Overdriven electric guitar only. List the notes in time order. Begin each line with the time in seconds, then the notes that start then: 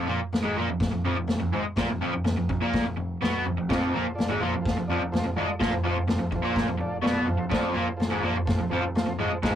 0.06 A#2 A#3
0.18 muted overdriven electric guitar stroke
0.44 G#2 G#3
0.57 A#2 A#3
0.70 F2
0.92 F2
1.05 F2 F3
1.18 F2
1.40 F2
1.53 G#2 G#3
1.65 muted overdriven electric guitar stroke
1.78 A#2 A#3
1.90 F2
2.01 F2 F3
2.14 F2
2.25 F2
2.37 F2
2.50 F2
2.61 A#2 A#3
2.85 F2
2.97 F2
3.22 B2 B3
3.46 F2
3.58 F2
3.69 F2 F3
3.94 A#2 A#3
4.07 muted overdriven electric guitar stroke
4.29 G#2 G#3
4.41 A#2 A#3
4.54 F2
4.77 F2
4.90 F2 F3
5.00 F2
5.26 F2
5.37 G#2 G#3
5.49 muted overdriven electric guitar stroke
5.60 A#2 A#3
5.72 F2
5.83 F2 F3
5.96 F2
6.08 F2
6.19 F2
6.32 F2
6.43 A#2 A#3
6.67 F2
6.78 F2
7.02 B2 B3
7.26 F2
7.38 F2
7.50 F2 F3
7.74 A#2 A#3
7.88 muted overdriven electric guitar stroke
8.11 G#2 G#3
8.23 A#2 A#3
8.37 F2
8.60 F2
8.72 F2 F3
8.83 F2
9.07 F2
9.19 G#2 G#3
9.32 muted overdriven electric guitar stroke
9.43 G#2 G#3